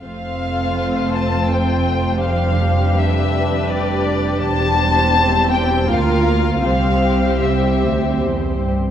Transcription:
<<
  \new Staff \with { instrumentName = "Violin section" } { \time 3/4 \key f \major \tempo 4 = 80 f''4. a''8 g''4 | f''4 e''4 d''4 | a''4. g''8 f''4 | f''4 e''4 r4 | }
  \new Staff \with { instrumentName = "Violin section" } { \time 3/4 \key f \major << { c''2.~ | c''4 b'2 | c''2 bes'4 | c''2~ c''8. r16 | } \\ { f'2. | g'2.~ | g'2 f'4 | g'2~ g'8. r16 | } >> }
  \new Staff \with { instrumentName = "Viola section" } { \time 3/4 \key f \major << { c'2. | d'2.~ | d'4 c'4 f'4 | c'2~ c'8. r16 | } \\ { a2. | g2.~ | g2 bes4 | g2~ g8. r16 | } >> }
  \new Staff \with { instrumentName = "Cello section" } { \clef bass \time 3/4 \key f \major f,2.~ | f,2. | e,2 d,4 | c,4 c,8 d,8 e,8 g,8 | }
  \new Staff \with { instrumentName = "Double bass section" } { \clef bass \time 3/4 \key f \major f,,2.~ | f,,2. | e,,2 d,4 | c,2~ c,8. r16 | }
>>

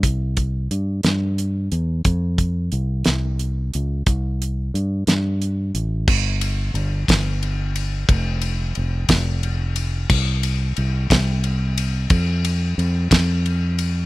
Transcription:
<<
  \new Staff \with { instrumentName = "Fingered electric bass" } { \clef bass \time 6/8 \key c \mixolydian \tempo 4. = 60 c,4 g,8 g,4 e,8 | f,4 c,8 c,4 cis,8 | c,4 g,8 g,4 a,,8 | g,,4 g,,8 g,,4. |
f,,4 f,,8 f,,4. | c,4 c,8 c,4. | f,4 f,8 f,4. | }
  \new DrumStaff \with { instrumentName = "Drums" } \drummode { \time 6/8 <hh bd>8 <hh bd>8 hh8 <hh sn>8 hh8 hh8 | <hh bd>8 <hh bd>8 hh8 <hh sn>8 hh8 hh8 | <hh bd>8 hh8 hh8 <hh sn>8 hh8 hh8 | <cymc bd>8 cymr8 cymr8 <bd cymr sn>8 cymr8 cymr8 |
<bd cymr>8 cymr8 cymr8 <bd cymr sn>8 cymr8 cymr8 | <cymc bd>8 cymr8 cymr8 <bd cymr sn>8 cymr8 cymr8 | <bd cymr>8 cymr8 cymr8 <bd cymr sn>8 cymr8 cymr8 | }
>>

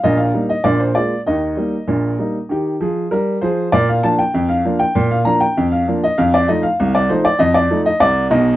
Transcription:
<<
  \new Staff \with { instrumentName = "Grand piano" } { \time 2/4 \key ees \major \tempo 4 = 98 ees''16 f''8 ees''16 d''16 c''16 d''8 | ees''2~ | ees''4 bes'8 c''8 | \key bes \major d''16 f''16 a''16 g''8 f''8 g''16~ |
g''16 f''16 bes''16 g''8 f''8 ees''16 | f''16 d''16 ees''16 f''8 d''16 c''16 d''16 | ees''16 d''8 ees''16 d''8 ees''8 | }
  \new Staff \with { instrumentName = "Grand piano" } { \clef bass \time 2/4 \key ees \major <bes,, bes,>8 <g bes ees'>8 <bes,, bes,>8 <aes bes f'>8 | <ees, ees>8 <g bes ees'>8 <bes,, bes,>8 <g bes ees'>8 | <ees g'>8 <f aes'>8 <g bes'>8 <f aes'>8 | \key bes \major bes,8 <f bes d'>8 f,8 <f bes d'>8 |
bes,8 <f bes d'>8 f,8 <f bes d'>8 | f,8 <f a ees'>8 c,8 <f a ees'>8 | f,8 <f a ees'>8 c,8 <ces, ces>8 | }
>>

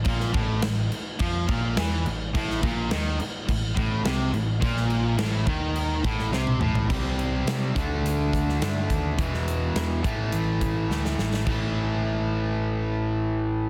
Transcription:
<<
  \new Staff \with { instrumentName = "Overdriven electric guitar" } { \clef bass \time 4/4 \key c \major \tempo 4 = 105 bes,8 a,8 a,8 r8 f8 bes,8 e8 a,8 | a,8 bes,8 dis8 r8 a,8 a,8 c8 a,8 | bes,4 a,8 dis4 a,8 c8 a,8 | \key a \minor <c g c'>4. <d a d'>4. <d a d'>4 |
<e, b, e>4. <a, e a>4. <a, e a>4 | <a, e a>1 | }
  \new Staff \with { instrumentName = "Overdriven electric guitar" } { \clef bass \time 4/4 \key c \major r1 | a,8 bes,8 dis8 r8 a,8 a,8 c8 a,8 | bes,4 a,8 dis4 a,8 c8 a,8 | \key a \minor <c g c'>4. <d a d'>2~ <d a d'>8 |
<e, b, e>4. <a, e a>2~ <a, e a>8 | <a, e a>1 | }
  \new Staff \with { instrumentName = "Distorted electric guitar" } { \clef bass \time 4/4 \key c \major bes,8 a,8 a,8 r8 f8 bes,8 e8 a,8 | a,8 bes,8 dis8 r8 a,8 a,8 c8 a,8 | bes,4 a,8 dis4 a,8 c8 a,8 | \key a \minor r1 |
r1 | r1 | }
  \new Staff \with { instrumentName = "Picked electric bass" } { \clef bass \time 4/4 \key c \major bes,,8 a,,8 a,,8 r8 f,8 bes,,8 e,8 a,,8 | a,,8 bes,,8 dis,8 r8 a,,8 a,,8 c,8 a,,8 | bes,,4 a,,8 dis,4 a,,8 c,8 a,,8 | \key a \minor c,4 c8 d,8 d,8 d,8 g,8 dis,8 |
e,,4 e,8 a,,8 a,,8 a,,8 d,8 a,,8 | a,,1 | }
  \new DrumStaff \with { instrumentName = "Drums" } \drummode { \time 4/4 <cymc bd>16 sn16 <cymc bd>8 <cymc sn>8 cymc8 <cymc bd>8 <cymc bd>8 <cymc sn>8 cymc8 | <cymc bd>16 sn16 <cymc bd>8 <cymc sn>8 cymc8 <cymc bd>8 <cymc bd>8 <cymc sn>8 cymc8 | <cymc bd>16 sn16 cymc8 <cymc sn>8 <cymc bd>8 cymc8 <cymc bd>16 sn16 sn16 tommh16 toml16 tomfh16 | <cymc bd>8 hh8 <hh sn>8 <hh bd>8 hh8 <hh bd>16 sn16 <hh sn>8 <hh bd>8 |
<hh bd>16 sn16 hh8 <hh sn>8 <hh bd>8 hh8 <hh bd>8 sn16 sn16 sn16 sn16 | <cymc bd>4 r4 r4 r4 | }
>>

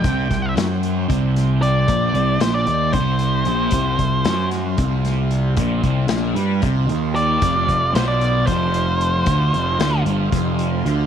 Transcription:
<<
  \new Staff \with { instrumentName = "Lead electric guitar" } { \time 7/8 \key c \major \tempo 4 = 114 g''4 r2 d''8~ | d''4 c''16 d''8. c''4.~ | c''4. r2 | r2. d''8~ |
d''4 c''16 d''8. c''4.~ | c''4. r2 | }
  \new Staff \with { instrumentName = "Transistor combo organ" } { \time 7/8 \key c \major << { c''2.~ c''8~ | c''2.~ c''8~ | c''2.~ c''8~ | c''2.~ c''8 |
<f c''>2.~ <f c''>8~ | <f c''>2.~ <f c''>8 | } \\ { g''2.~ g''8~ | g''2.~ g''8 | f'2.~ f'8~ | f'2.~ f'8~ |
f'2.~ f'8~ | f'2.~ f'8 | } >> }
  \new Staff \with { instrumentName = "Distorted electric guitar" } { \clef bass \time 7/8 \key c \major c8 c8 fis4 c4. | bes,8 c8 bes,8 ees8 c4 bes,8 | c8 c8 fis4 c4. | bes,8 c8 bes,8 g8 c8 ees4 |
f,8 f,8 b,4 f,4. | d8 f,8 d8 g,8 f,4 d8 | }
  \new Staff \with { instrumentName = "Picked electric bass" } { \clef bass \time 7/8 \key c \major c,8 c,8 fis,4 c,4. | bes,,8 c,8 bes,,8 ees,8 c,4 bes,,8 | c,8 c,8 fis,4 c,4. | bes,,8 c,8 bes,,8 g,8 c,8 ees,4 |
f,,8 f,,8 b,,4 f,,4. | d,8 f,,8 d,8 g,,8 f,,4 d,8 | }
  \new DrumStaff \with { instrumentName = "Drums" } \drummode { \time 7/8 <hh bd>8 <hh bd sn>8 <hh sn>8 hh8 <hh bd>8 <hh sn>8 hh8 | <hh bd>8 hh8 <hh sn>8 hh8 <hh bd>8 hh8 hh8 | <hh bd>8 <hh bd>8 <hh sn>8 <hh sn>8 <hh bd>8 <hh sn>8 hh8 | <hh bd>8 <hh bd>8 <hh sn>8 hh8 <hh bd>8 hh8 hh8 |
<hh bd>8 <hh bd>8 <hh sn>8 hh8 <hh bd>8 hh8 hh8 | <hh bd>8 hh8 <hh sn>8 hh8 <hh bd sn>8 hh8 hh8 | }
>>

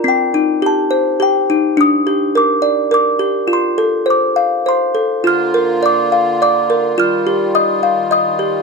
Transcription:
<<
  \new Staff \with { instrumentName = "Music box" } { \time 3/4 \key bes \major \tempo 4 = 105 << { g''4 a''4 g''8. r16 | ees'''4 d'''4 d'''4 | c'''4 d'''4 c'''8. r16 | f'''4 d'''4 d'''4 |
f'''4 ees'''4 ees'''4 | } \\ { c'8 ees'8 g'8 c''8 g'8 ees'8 | d'8 g'8 bes'8 d''8 bes'8 g'8 | f'8 a'8 c''8 f''8 c''8 a'8 | f'8 bes'8 d''8 f''8 d''8 bes'8 |
f'8 g'8 ees''8 f''8 ees''8 g'8 | } >> }
  \new Staff \with { instrumentName = "Accordion" } { \time 3/4 \key bes \major r2. | r2. | r2. | f'2.~ |
f'2. | }
  \new Staff \with { instrumentName = "Accordion" } { \clef bass \time 3/4 \key bes \major r2. | r2. | r2. | <d bes>2. |
<ees g>2. | }
>>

